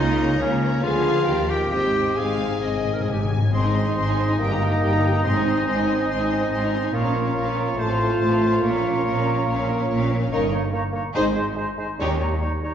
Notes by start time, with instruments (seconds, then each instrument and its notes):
Already playing: double bass section C#2, cello section C#3, french horn section A#3 F4, viola section A#3, clarinet D#4
0.00 violin section D#5
0.18 violin section C#5 A#5
0.38 double bass section C#2, cello section C#3, french horn section A#3 F4, viola section A#3, clarinet C#4, violin section C#5
0.62 violin section C#5 A#5
0.81 double bass section D2, cello section D3, viola section F3, french horn section B3 G#4, clarinet F4, violin section B4 F5 G#5
1.05 violin section B4 G#5
1.25 double bass section D#2, cello section D#3, french horn section A#3 G4, violin section A#4 G5
1.48 french horn section F4, clarinet G4, violin section A#4 G5
1.70 double bass section G#1, cello section G#2, timpani G#2, viola section C4, french horn section C4 D#4, clarinet G4, violin section C5 D#5 G5
1.81 timpani G#2
1.90 timpani G#2
1.95 timpani G#2, violin section C5 D#5
2.05 timpani G#2
2.13 timpani G#2
2.17 double bass section G#1, cello section G#2, timpani G#2, french horn section C4 D#4, clarinet G#4, violin section F5 G#5
2.28 timpani G#2
2.36 timpani G#2
2.44 timpani G#2
2.51 timpani G#2
2.59 double bass section G#1, timpani G#2, cello section G#2, violin section D#5
2.68 timpani G#2
2.76 timpani G#2
2.84 timpani G#2
2.92 timpani G#2, clarinet A#4
3.00 timpani G#2, clarinet G#4
3.08 double bass section G#1, timpani G#2, cello section G#2, clarinet G4, violin section G#5
3.15 timpani G#2
3.21 timpani G#2, clarinet G#4
3.31 timpani G#2
3.38 timpani G#2
3.46 timpani G#2
3.53 double bass section G#1, cello section G#2, bassoon G#3, french horn section C4 D#4, viola section C4, clarinet D#4, violin section C5 C6, oboe D#5, flute section C6
3.64 viola section D#4, violin section D#5 G#5
3.75 viola section C4, violin section C5 C6
3.85 viola section D#4, violin section D#5 G#5
3.97 double bass section G#1, cello section G#2, viola section C4, violin section C5 C6
4.08 viola section D#4, violin section D#5 G#5
4.18 viola section C4, violin section C5 C6
4.28 viola section D#4, violin section D#5 G#5
4.39 double bass section G1, cello section G2, bassoon A#3, french horn section A#3, viola section G4, violin section A#4 G5, flute section A#5
4.50 viola section D#4, violin section G4 A#5
4.60 viola section G4, violin section A#4 G5
4.70 viola section D#4, violin section G4 A#5
4.81 double bass section G1, cello section G2, viola section G4, violin section A#4 G5
4.92 viola section D#4, violin section G4 A#5
5.03 viola section G4, violin section A#4 G5
5.13 viola section D#4, violin section G4 A#5
5.24 double bass section G#1, cello section G#2, timpani G#2, bassoon C4, viola section C4, french horn section C4, violin section C5 C6, flute section G#5
5.35 viola section D#4, violin section D#5 G#5
5.46 viola section C4, violin section C5 C6
5.56 viola section D#4, violin section D#5 G#5
5.67 double bass section G#1, cello section G#2, viola section C4, violin section C5 C6
5.78 viola section D#4, violin section D#5 G#5
5.87 viola section C4, violin section C5 C6
5.99 viola section D#4, violin section D#5 G#5
6.09 double bass section G#1, cello section G#2, viola section C4, violin section C5 C6
6.19 viola section D#4, violin section D#5 G#5
6.31 viola section C4, violin section C5 C6
6.41 viola section D#4, violin section D#5 G#5
6.51 double bass section G#1, cello section G#2, viola section C4, violin section C5 C6
6.62 viola section D#4, violin section D#5 G#5
6.72 viola section C4, violin section C5 C6
6.83 viola section D#4, violin section D#5 G#5
6.93 double bass section A#1, cello section A#2, viola section A#3, bassoon A#3, french horn section C#4 F4, clarinet F4, violin section A#4 C#5, oboe C#5, flute section A#5
7.04 viola section C#4, violin section C#5 F5
7.14 viola section A#3, violin section A#4 C#5
7.25 viola section C#4, violin section C#5 F5
7.35 double bass section A#1, cello section A#2, viola section A#3, violin section A#4 C#5
7.46 viola section C#4, violin section C#5 F5
7.56 viola section A#3, violin section A#4 C#5
7.67 viola section C#4, violin section C#5 F5
7.77 double bass section A1, cello section A2, bassoon A3, viola section A3, french horn section C4, oboe C5, violin section C5 A5, flute section C6
7.87 viola section C4, violin section A4 F5
7.99 viola section A3, violin section C5 A5
8.09 viola section C4, violin section A4 F5
8.20 double bass section A1, cello section A2, viola section A3, violin section C5 A5
8.30 viola section C4, violin section A4 F5
8.41 viola section A3, violin section C5 A5
8.52 viola section C4, violin section A4 F5
8.62 double bass section A#1, cello section A#2, bassoon A#3, viola section A#3, french horn section C#4, violin section A#4 C#5, oboe C#5, flute section A#5
8.74 viola section C#4, violin section C#5 F5
8.84 viola section A#3, violin section A#4 C#5
8.95 viola section C#4, violin section C#5 F5
9.05 double bass section A#1, cello section A#2, viola section A#3, violin section A#4 C#5
9.15 viola section C#4, violin section C#5 F5
9.26 viola section A#3, violin section A#4 C#5
9.36 viola section C#4, violin section C#5 F5
9.47 double bass section A#1, cello section A#2, viola section A#3, violin section A#4 C#5
9.57 viola section C#4, violin section C#5 F5
9.67 viola section A#3, violin section A#4 C#5
9.79 viola section C#4, violin section C#5 F5
9.88 double bass section A#1, cello section A#2, viola section A#3, violin section A#4 C#5
10.00 viola section C#4, violin section C#5 F5
10.11 viola section A#3, violin section A#4 C#5
10.21 viola section C#4, violin section C#5 F5
10.31 double bass section G1, cello section G2, bassoon A#3, french horn section C#4 D#4, viola section D#4, clarinet D#4, violin section A#4 C#5, oboe C#5, flute section A#5
10.52 bassoon A#3, clarinet D#4, oboe C#5, flute section A#5
10.73 bassoon A#3, clarinet D#4, oboe C#5, flute section A#5
10.92 bassoon A#3, clarinet D#4, oboe C#5, flute section A#5
11.14 double bass section G#1, cello section G#2, bassoon G#3, french horn section C4 D#4, viola section D#4, clarinet D#4, violin section G#4 C5, oboe C5, flute section C6
11.36 bassoon G#3, clarinet D#4, oboe C5, flute section C6
11.56 bassoon G#3, clarinet D#4, oboe C5, flute section C6
11.77 bassoon G#3, clarinet D#4, oboe C5, flute section C6
11.99 cello section D#2, double bass section D#2, timpani D#3, bassoon G3, french horn section C#4 G4, viola section D#4, clarinet D#4, violin section G4 C#5, oboe C#5, flute section A#5
12.20 bassoon G3, clarinet D#4, oboe C#5, flute section A#5
12.41 bassoon G3, clarinet D#4, oboe C#5, flute section A#5
12.63 bassoon G3, clarinet D#4, oboe C#5, flute section A#5